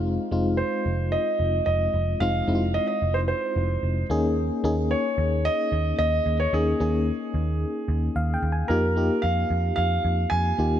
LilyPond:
<<
  \new Staff \with { instrumentName = "Grand piano" } { \time 4/4 \key ees \mixolydian \tempo 4 = 111 r4 c''4 ees''4 ees''4 | f''4 ees''16 ees''8 c''16 c''4. r8 | r4 des''4 ees''4 ees''8. des''16 | aes'2.~ aes'8 r8 |
bes'4 f''4 f''4 aes''4 | }
  \new Staff \with { instrumentName = "FM electric piano" } { \time 4/4 \key ees \mixolydian <aes c' ees' f'>8 <aes c' ees' f'>4. r2 | <aes c' ees' f'>8 <aes c' ees' e' f'>4. r4. <bes des' ees' aes'>8~ | <bes des' ees' aes'>8 <bes des' ees' aes'>4. r2 | <bes des' ees' aes'>8 <bes des' ees' aes'>4. r4 \tuplet 3/2 { f''8 g''8 aes''8 } |
<bes ees' f' g'>8 <bes ees' f' g'>4. r4. <bes ees' f' g'>8 | }
  \new Staff \with { instrumentName = "Picked electric bass" } { \clef bass \time 4/4 \key ees \mixolydian f,,8 f,,8. r16 f,,8. r16 f,,8 f,,8 f,,8 | f,,8 f,,8. r16 f,,8. r16 f,,8 f,,8 ees,8~ | ees,8 ees,8. r16 ees,8. r16 ees,8 ees,8 ees,8 | ees,8 ees,8. r16 ees,8. r16 ees,8 ees,8 ees,8 |
f,4 f,8 f,8 f,8 f,8 f,8 ees,8 | }
>>